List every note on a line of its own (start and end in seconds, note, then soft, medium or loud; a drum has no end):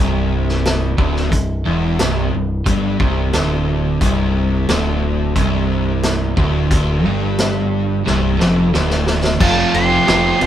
0.00 0.94 C1 medium
0.00 0.97 C2 loud
0.49 snare soft
0.65 snare loud
0.65 closed hi-hat medium
0.97 1.29 D1 medium
0.97 1.31 D2 medium
0.97 kick loud
1.16 snare soft
1.32 1.63 C1 medium
1.32 1.59 C2 medium
1.32 kick medium
1.32 closed hi-hat medium
1.65 1.97 E1 medium
1.65 1.98 E2 medium
1.99 2.31 C1 medium
1.99 2.31 C2 medium
1.99 snare loud
1.99 closed hi-hat medium
2.33 2.65 C1 medium
2.33 2.60 C2 medium
2.66 2.98 G1 medium
2.66 2.99 G2 loud
2.66 kick loud
2.66 closed hi-hat medium
3.00 3.31 C1 medium
3.00 3.33 C2 loud
3.00 kick loud
3.33 3.98 D1 medium
3.33 4.00 D2 loud
3.33 snare loud
3.33 closed hi-hat medium
4.01 4.65 C1 medium
4.01 4.68 C2 loud
4.01 kick loud
4.01 closed hi-hat medium
4.69 5.32 D1 medium
4.69 5.35 D2 medium
4.69 snare loud
4.69 closed hi-hat medium
5.36 6.33 C1 medium
5.36 6.36 C2 loud
5.36 kick medium
5.36 closed hi-hat medium
6.03 snare loud
6.03 closed hi-hat medium
6.37 6.69 D1 medium
6.37 6.70 D2 loud
6.37 kick medium
6.71 7.02 D1 medium
6.71 7.05 D2 loud
6.71 kick loud
6.71 closed hi-hat medium
7.05 8.02 G1 medium
7.05 8.04 G2 loud
7.38 snare loud
7.38 closed hi-hat medium
8.05 8.38 C1 medium
8.05 8.38 C2 loud
8.05 snare medium
8.39 8.72 F1 medium
8.39 8.72 F2 loud
8.39 snare medium
8.73 9.37 D1 medium
8.73 9.39 D2 loud
8.73 snare medium
8.90 snare medium
9.07 snare medium
9.24 snare medium
9.40 9.64 F1 medium
9.40 10.04 F2 medium
9.40 10.05 C3 medium
9.40 9.91 F3 loud
9.40 9.90 A3 medium
9.40 9.90 C4 loud
9.40 9.72 F4 medium
9.40 9.88 F4 loud
9.40 9.68 A4 medium
9.40 9.68 C5 medium
9.40 9.68 F5 medium
9.40 9.68 G5 loud
9.40 9.75 A5 loud
9.40 kick loud
9.40 crash loud
9.74 9.97 F1 medium
9.74 10.38 G4 medium
9.74 10.01 A4 medium
9.74 10.01 C5 medium
9.74 10.02 F5 medium
9.74 10.02 G5 medium
9.74 10.44 C6 loud
9.74 ride medium
9.89 10.06 F3 medium
9.89 10.06 A3 medium
9.89 10.08 C4 medium
9.89 10.08 F4 medium
10.05 10.31 F1 medium
10.05 10.46 F2 medium
10.05 10.46 C3 medium
10.05 10.39 F3 loud
10.05 10.40 A3 medium
10.05 10.40 C4 loud
10.05 10.40 F4 loud
10.05 10.35 A4 medium
10.05 10.35 C5 medium
10.05 10.35 F5 medium
10.05 10.35 G5 medium
10.05 snare loud
10.05 ride loud
10.40 10.46 F1 medium
10.40 10.46 C3 medium
10.40 10.46 F3 medium
10.40 10.46 F4 medium
10.40 10.46 A4 medium
10.40 10.46 C5 medium
10.40 10.46 F5 medium
10.40 10.46 G5 medium
10.40 10.46 A5 loud
10.40 muted overdriven electric guitar stroke soft
10.40 ride medium